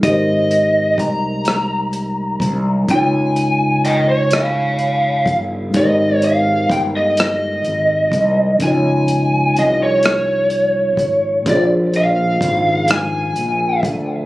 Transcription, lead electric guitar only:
X:1
M:6/8
L:1/16
Q:3/8=42
K:Ab
V:1 name="Lead electric guitar"
e4 b8 | a4 [eg] d f4 z2 | e2 f2 g e e6 | a4 e d6- d |
=d2 f4 a4 z2 |]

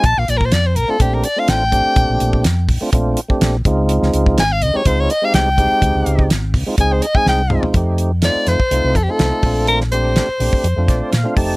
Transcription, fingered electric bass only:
X:1
M:4/4
L:1/16
Q:"Swing 16ths" 1/4=125
K:Bb
V:1 name="Fingered electric bass" clef=bass
B,,, B,,, B,,,2 F,,2 B,,, z B,,,2 z2 A,,,3 z | B,,, B,,, B,,,2 F,,2 B,,, z B,,,2 z2 B,,,2 _D,,2- | _D,, D,, D,,2 _A,,,2 D,, z D,,2 z2 C,,3 z | _D,, D,, D,,2 _A,,,2 D,, z D,,2 z2 C,,3 z |
F,,4- F,, z F,, z C,, C,, F,, z C,, z B,,,2- | B,,,4- B,,, z B,,, z F,, F,, B,,, z B,, z F,,,2 |]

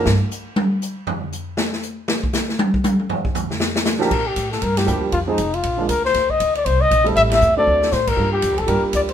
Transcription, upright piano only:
X:1
M:4/4
L:1/8
Q:"Swing" 1/4=236
K:Bb
V:1 name="Upright piano"
z8 | z8 | z8 | z6 z [F,B,DG] |
z6 [F,G,B,DG]2 | z [F,_A,CE_A] z3 [F,A,B,DF] z2 | z6 z [G,A,C=EA]- | [G,A,C=EA]2 z [_G,A,CDA]3 z2 |
[G,B,DFB]3 z [G,B,DFG]3 z |]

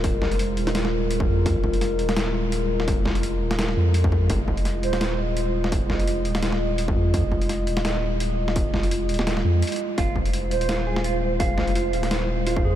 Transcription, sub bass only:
X:1
M:4/4
L:1/16
Q:"Swing 16ths" 1/4=169
K:Fm
V:1 name="Sub bass" clef=bass
E,,, F,,,4- F,,, E,,,8 F,,2- | F,, F,,,4- F,,, E,,,8- E,,,2- | E,,, F,,,4- F,,, E,,,4 F,,6 | F,,,6 E,,,8- E,,,2- |
E,,, F,,,4- F,,, E,,,8 F,,2- | F,, F,,,4- F,,, E,,,8- E,,,2- | E,,, F,,,4- F,,, E,,,4 F,,2 z4 | F,,,6 E,,,8- E,,,2- |
E,,, F,,,4- F,,, E,,,8 F,,2 |]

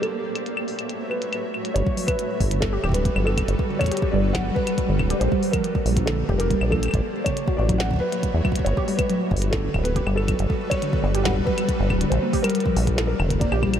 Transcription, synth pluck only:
X:1
M:4/4
L:1/16
Q:1/4=139
K:Glyd
V:1 name="Synth pluck" clef=bass
z16 | G, z F, z4 D, z G G G, z F, z2 | z2 D, z G G G, z F, z4 D, z G | G G, z =F, z4 D, z G G G, z F, z |
z3 C, z F F F, z F, z F, z2 F, z | B, G G, z F, z4 D, z B, G G, z F, | z4 D, z B, G G, z F, z4 D, | z _B, G G, z =F, z4 D, z B, G G, z |]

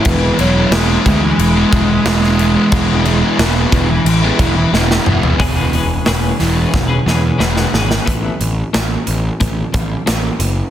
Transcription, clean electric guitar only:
X:1
M:4/4
L:1/16
Q:1/4=90
K:Emix
V:1 name="Clean electric guitar"
z16 | z16 | [E,G,CGB] [CGB] [G,CGB]2 [E,G,CGB]3 [CGB]2 [CGB] [G,CGB]2 [E,G,CGB] [CGB] [G,CGB] [GB] | [A,B,E]2 [A,B,]2 [A,B,]2 [A,B,]2 [A,B,]2 [A,B,]2 [A,B,]2 [A,B,]2 |]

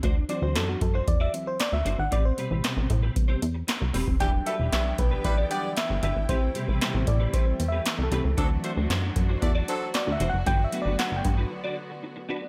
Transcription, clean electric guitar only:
X:1
M:4/4
L:1/16
Q:1/4=115
K:Ador
V:1 name="Clean electric guitar"
[DFc]2 [DFc] [DFc] [DFc]2 z [DFc] z [DFd]2 z3 [DFc]2 | [CGB]2 [CGB] [CGB] [CGB]2 z [CGB] z [CGc]2 z3 [CGB]2 | [DGB]2 [DGB] [DGB] [DGB]2 z [DGB] z [DGd]2 z3 [DGB]2 | [CGB]2 [CGB] [CGB] [CGB]2 z [CGB] [CGB]2 z [CGB] z2 [CGB]2 |
[DFc]2 [DFc] [DFc] [DFc]2 z [DFc] z [DFd] [DFc] z3 [DFc]2 | [DFB]2 [DFB] [DFB] [DFB]2 z [DFB] z [DFd]2 z3 [DFB]2 |]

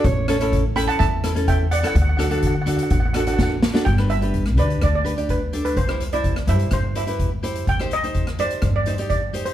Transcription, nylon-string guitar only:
X:1
M:4/4
L:1/16
Q:1/4=126
K:G
V:1 name="Nylon-string guitar"
z2 [^CEA] [CEA]2 z [CEA]2 z2 [CEA] [CEA]2 z2 [CEA] | z2 [DFA] [DFA]2 z [DFA]2 z2 [DFA] [DFA]2 z2 [DFA] | z [DGB] z [DGB]2 z [DGB]2 z2 [DGB] [DGd]2 z [DGA]2 | z [EGc] z [EGc]2 z [EGc]2 z2 [EGc] [EGB]2 z [EGc]2 |
z [_EGc] z [EGc]2 z [EGc]2 z2 [EGc] [EGd]2 z [EGc]2 |]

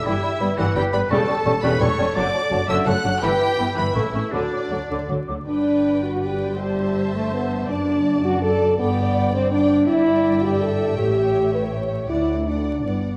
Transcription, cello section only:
X:1
M:3/4
L:1/8
Q:1/4=163
K:D
V:1 name="Cello section" clef=bass
G,, z G,, G,, G,, G,, | E,, z E,, E,, E,, E,, | F,, z F,, F,, F,, F,, | G,, z G,, G,, A,, A,, |
D, z D, D, D, D, | [K:G] G,,6- | G,,6 | F,,6 |
G,,6 | [K:D] G,,6 | A,,6 | D,,4 G,,2 |]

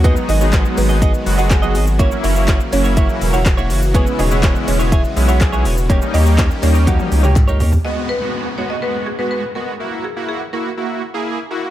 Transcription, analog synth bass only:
X:1
M:4/4
L:1/8
Q:1/4=123
K:G#m
V:1 name="Analog synth bass" clef=bass
D,, G,,,2 G,,,2 F,,,2 G,,,- | G,,, F,,,2 F,,,2 E,,,2 F,,,- | F,,, E,,,2 E,,,2 B,,,2 E,,,- | E,,, D,,2 D,,2 C,,2 D,, |
z8 | z8 |]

